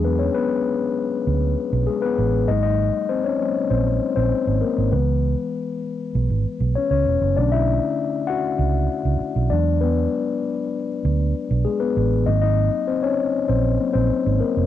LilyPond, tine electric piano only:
<<
  \new Staff \with { instrumentName = "Tine electric piano" } { \time 4/4 \key e \mixolydian \tempo 4 = 98 <b b'>16 <cis' cis''>16 <b b'>2~ <b b'>8 <gis gis'>16 <b b'>8. | <dis' dis''>16 <dis' dis''>8. <bis bis'>16 <cis' cis''>8. <bis bis'>8. <bis bis'>8. <bes bes'>8 | b'4. r4. <cis' cis''>16 <cis' cis''>8. | <d' d''>16 <e' e''>4~ <e' e''>16 <fis' fis''>2 <d' d''>8 |
<b b'>2. <gis gis'>16 <b b'>8. | <dis' dis''>16 <dis' dis''>8. <bis bis'>16 <cis' cis''>8. <bis bis'>8. <bis bis'>8. <bes bes'>8 | }
  \new Staff \with { instrumentName = "Tine electric piano" } { \clef bass \time 4/4 \key e \mixolydian <fis gis d'>8 r2. r8 | <fis gis bes>4. <fis bes bis'>8 r2 | <e gis b>1 | <d a cis'>8 r2. <fis gis>8~ |
<fis gis>2.~ <fis gis>8 r8 | <fis bes bis>4. r4 <fis bes bis>8 r4 | }
>>